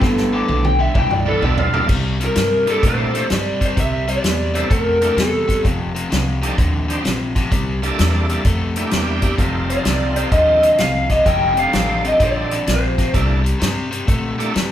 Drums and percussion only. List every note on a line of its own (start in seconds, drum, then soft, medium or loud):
0.02 kick loud
0.02 snare medium
0.18 snare medium
0.49 high tom medium
0.65 high tom medium
0.95 kick loud
0.95 mid tom medium
1.11 mid tom medium
1.43 floor tom medium
1.58 floor tom loud
1.74 floor tom medium
1.89 kick loud
1.89 crash medium
2.21 closed hi-hat medium
2.36 snare loud
2.36 closed hi-hat medium
2.67 closed hi-hat medium
2.83 kick loud
2.83 closed hi-hat medium
3.15 closed hi-hat medium
3.30 snare loud
3.30 closed hi-hat medium
3.61 kick medium
3.61 closed hi-hat medium
3.77 kick medium
3.77 closed hi-hat medium
4.08 closed hi-hat medium
4.24 snare loud
4.24 closed hi-hat medium
4.55 closed hi-hat medium
4.71 kick loud
4.71 closed hi-hat medium
5.02 closed hi-hat medium
5.18 snare loud
5.18 closed hi-hat medium
5.49 kick medium
5.49 snare soft
5.49 closed hi-hat medium
5.65 kick loud
5.65 closed hi-hat medium
5.96 closed hi-hat medium
6.12 snare loud
6.12 closed hi-hat medium
6.43 closed hi-hat medium
6.58 kick loud
6.58 closed hi-hat medium
6.90 closed hi-hat medium
7.05 snare loud
7.05 closed hi-hat medium
7.36 kick medium
7.36 snare soft
7.36 closed hi-hat medium
7.52 kick loud
7.52 closed hi-hat medium
7.83 closed hi-hat medium
7.99 snare loud
7.99 closed hi-hat medium
8.29 closed hi-hat medium
8.45 kick loud
8.45 closed hi-hat medium
8.76 closed hi-hat medium
8.91 snare loud
8.91 closed hi-hat medium
9.22 kick medium
9.22 closed hi-hat medium
9.38 kick medium
9.38 closed hi-hat medium
9.70 closed hi-hat medium
9.85 snare loud
9.85 closed hi-hat medium
10.16 closed hi-hat medium
10.32 kick loud
10.32 closed hi-hat medium
10.63 closed hi-hat medium
10.78 snare loud
10.78 closed hi-hat medium
11.09 kick medium
11.09 snare soft
11.09 closed hi-hat medium
11.26 kick loud
11.26 closed hi-hat medium
11.57 closed hi-hat medium
11.73 snare loud
11.73 closed hi-hat medium
12.04 closed hi-hat medium
12.20 kick loud
12.20 closed hi-hat medium
12.51 closed hi-hat medium
12.67 snare loud
12.67 closed hi-hat medium
12.98 kick medium
12.98 snare soft
12.98 closed hi-hat medium
13.14 kick medium
13.14 closed hi-hat medium
13.46 closed hi-hat medium
13.61 snare loud
13.61 closed hi-hat medium
13.92 closed hi-hat medium
14.08 kick loud
14.08 closed hi-hat medium
14.40 closed hi-hat medium
14.55 snare loud
14.55 closed hi-hat medium